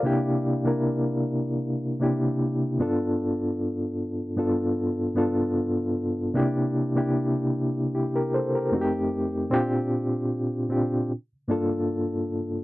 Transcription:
reed electric piano
Already playing: D5 F5
0.03 C3 A#3 D4 E4 G4
0.64 C3 A#3 D4 E4 A#4
2.00 C3 A#3 D4 E4 G4
2.79 G2 B3 D4 F4 A4
4.36 G2 B3 D4 F4 A4
5.15 G2 B3 D4 F4 A4
6.34 C3 A#3 D4 E4 G4
6.95 C3 A#3 D4 E4 G4
7.95 E4 G4
8.16 G4 A#4
8.34 A4 C5
8.55 G4 A#4
8.71 F2 A3 C4 D#4 F#4
8.81 G4
9.50 A#2 C4 D4 F4 G4
10.69 A#2 C4 D4 F4 G4
11.48 G2 A#3 D4 F4 A4

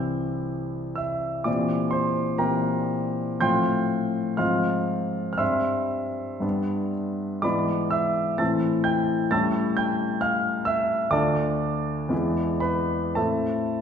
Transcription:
grand piano
Already playing: C2 E3 C4 G4 G5 E6 G6
0.96 E5 E6
1.44 A#2 E3 C4 G4 D5 D6
1.91 C5 C6
2.38 A#2 E3 C4 G4 A#4 G5 A#5
3.40 A2 F3 C4 F4 G5 C6 G6
4.37 G#2 F3 C4 F4 F5 C6 F6
5.33 F6
5.38 G2 G3 C4 E5 C6 E6
6.40 G2 G3 B3 D4
7.42 G#2 E3 B3 E4 D5 B5 D6
7.91 E5 E6
8.38 A2 E3 C4 E4 A5 E6 A6
8.84 G5 G6
9.31 A2 G3 C#4 E4 A5 E6 A6
9.77 G5 G6
10.21 F5 F6
10.65 E5 E6
11.11 D2 A3 D4 F4 D5 A5 D6
12.09 E2 G#3 B3 E4
12.60 B4 B5
13.15 A2 A3 C4 E4 A4 E5 A5

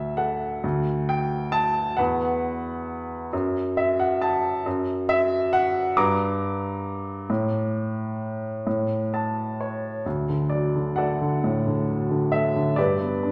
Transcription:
upright piano
Already playing: D2 E5
0.17 A4 F#5
0.64 D2
1.09 G5
1.52 A5
1.97 E2 B4 F#5
3.33 F#2
3.77 E5
4.00 F#5
4.21 A5
4.66 F#2
5.09 E5
5.53 F#5
5.97 G2 A#5 D6
7.30 A2
8.67 A2
9.14 A5
9.61 C#5
10.06 D2
10.30 D3
10.50 F#3 D5
10.76 D3
10.96 A3 A4 D5 F#5
11.21 D3
11.44 A2
11.67 D3
11.89 F#3
12.11 D3
12.32 A3 E5
12.56 D3
12.76 G2 G4 B4 D5
13.01 B3
13.23 D4

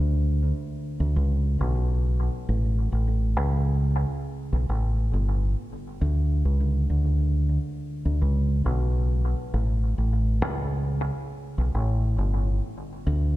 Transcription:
fingered electric bass
Already playing: D2
1.00 D2
1.16 C#2
1.61 B1
2.49 A1
2.92 A1
3.37 C#2
4.53 B1
4.69 A1
5.13 G1
6.01 D2
6.45 C#2
6.90 D2
8.05 D2
8.22 C#2
8.66 B1
9.54 A1
9.98 A1
10.42 C#2
11.58 B1
11.75 A1
12.18 G1
13.07 D2

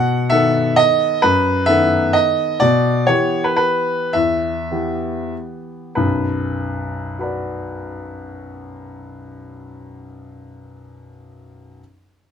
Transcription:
upright piano
Already playing: B2 F#5
0.30 D#3 B3 A4 E5
0.76 D#5
1.22 F#2 B4
1.66 D#3 B3 A4 E5
2.13 D#5
2.60 B2 D5
3.07 E3 B3 G4 C#5
3.44 B4
3.56 B4
4.13 E2 E5
4.71 E3 B3 G4
5.95 B1 F#2 B4
7.19 F#4 B4
7.23 D5

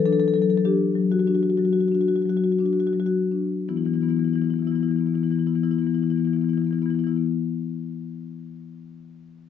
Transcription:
marimba
Already playing: E3
0.06 D4 A4
0.13 A4
0.20 A4
0.28 A4
0.34 F#3 A4
0.42 A4
0.50 A4
0.58 A4
0.65 D4 G4
0.95 F#3
1.12 F#4
1.19 F#4
1.27 D4 F#4
1.35 F#4
1.43 F#4
1.50 F#4
1.57 F#3 F#4
1.65 F#4
1.73 F#4
1.80 F#4
1.88 D4 F#4
1.95 F#4
2.01 F#4
2.08 F#4
2.16 F#4
2.22 F#3 F#4
2.29 F#4
2.37 F#4
2.44 F#4
2.52 F#4
2.59 D4 F#4
2.65 F#4
2.73 F#4
2.80 F#4
2.87 F#4
2.93 F#3 F#4
3.00 F#4
3.06 F#4
3.32 D4
3.68 E3 B3 E4
3.76 E3 B3 E4
3.85 E3 B3 E4
3.93 E3 B3 E4
4.01 E3 B3 E4
4.09 E3 B3 E4
4.16 E3 B3 E4
4.25 E3 B3 E4
4.33 E3 E4
4.38 B3 E4
4.44 E3 B3
4.50 E3 E4
4.56 B3 E4
4.62 E3 B3
4.67 E4
4.72 E3 B3 E4
4.80 E3 B3 E4
4.88 E3 B3 E4
4.96 E3 E4
5.01 B3
5.06 E3 B3 E4
5.14 E3 B3 E4
5.23 E3 B3 E4
5.31 E3 E4
5.36 E3 B3 E4
5.47 E3 B3 E4
5.55 E3 B3 E4
5.63 E3 B3 E4
5.71 E3 B3 E4
5.78 E3 B3 E4
5.87 E3 B3 E4
5.94 E3 E4
5.99 B3 E4
6.04 E3 B3
6.10 E3 E4
6.16 B3 E4
6.20 E3
6.25 E3 B3 E4
6.33 E3 B3 E4
6.41 E3 B3 E4
6.49 B3 E4
6.54 E3
6.58 E3 B3 E4
6.65 B3 E4
6.71 E3 B3 E4
6.79 E3 B3 E4
6.86 E3
6.90 B3 E4
6.95 E3 B3 E4
7.04 E3 E4
7.08 E3 B3
7.16 B3 E4

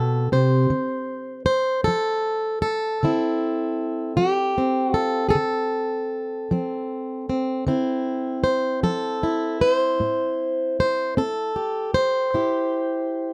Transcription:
steel-string acoustic guitar
Already playing: B2 G4 A4
0.32 C3 C5
0.70 D3
1.46 C5
1.84 F3 A4
2.62 A4
3.03 D3 C4 E4
4.17 F3 G4
4.58 C4
4.94 F4 A4
5.29 G#4 A4
5.35 D3
6.51 F3 C4
7.30 C4
7.67 D3 C4 E4
8.44 C5
8.83 F3 A4
9.23 E4
9.61 C5
10.00 A2
10.80 C5
11.17 C4 A4
11.56 G4
11.94 C5
12.34 A2 E4 G4

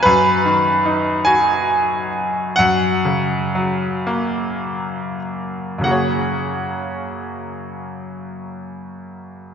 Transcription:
grand piano
0.03 F#2 B4
0.45 D#3
0.85 D#4
1.25 F#4 G#5
2.56 F#2 F#5
3.05 C#3
3.55 F#3
4.07 A#3
5.78 F#2 C#3
5.83 A#3 F#4 F#5
5.88 G#4 C#5

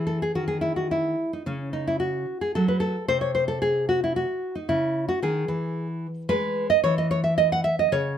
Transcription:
nylon-string guitar
Already playing: E3
0.07 A4
0.22 G#4
0.35 D#3 F#4
0.48 G#4
0.61 E4
0.76 F#4
0.91 E4
1.33 D#4
1.46 C#3 C#4
1.73 D#4
1.87 E4
2.00 F#4
2.41 G#4
2.55 F#3 A4
2.68 B4
2.80 A4
3.08 C3 C5
3.21 C#5
3.35 C5
3.48 A4
3.62 G#4
3.89 F#4
4.04 E4
4.16 F#4
4.55 D#4
4.69 C#3 E4
5.09 F#4
5.22 D#3 G#4
5.48 E3
6.29 G#3 B4
6.70 D#5
6.84 E3 C#5
6.98 D#5
7.11 C#5
7.24 E5
7.38 D#5
7.52 F#5
7.64 E5
7.79 D#5
7.92 C#3 C#5

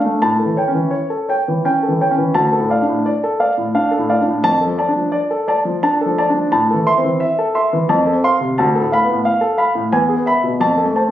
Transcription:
grand piano
0.00 D4
0.05 A3
0.22 A2 A5
0.39 A4
0.45 E3
0.57 C#5 G5
0.68 C#4
0.75 E3
0.91 C#5
1.10 A4
1.29 C#5 G5
1.48 E3
1.65 C#4 G5
1.83 A4
1.88 E3
2.01 C#5 G5
2.11 C#4
2.18 E3
2.34 D2 A5
2.53 A4
2.59 A2
2.70 D5 F5
2.82 D4
2.87 A2
3.06 D5
3.24 A4
3.40 D5 F5
3.57 A2
3.75 D4 F5
3.91 A4
3.98 A2
4.09 D5 F5
4.21 D4
4.27 A2
4.44 F2 A5
4.61 A4
4.67 F3
4.78 D5 A5
4.88 D4
4.96 F3
5.12 D5
5.31 A4
5.48 D5 A5
5.65 F3
5.83 D4 A5
6.01 A4
6.06 F3
6.18 D5 A5
6.30 D4
6.34 F3
6.52 A2 A5
6.71 E3 A4
6.87 E5 C6
6.97 C4
7.04 E3
7.20 E5
7.39 A4
7.55 E5 C6
7.73 E3
7.89 F2 A5
8.07 A4
8.12 C4
8.24 F5 C6
8.40 C3
8.58 D2 A5
8.75 A4
8.80 A2
8.92 F5 B5
9.04 B3
9.10 A2
9.25 F5
9.41 A4
9.58 F5 B5
9.75 A2
9.92 E2 G#5
10.09 G#4
10.17 B3
10.26 E5 B5
10.44 B2
10.60 F2 A5
10.78 A4
10.84 A3
10.96 C5 A5
11.08 C4

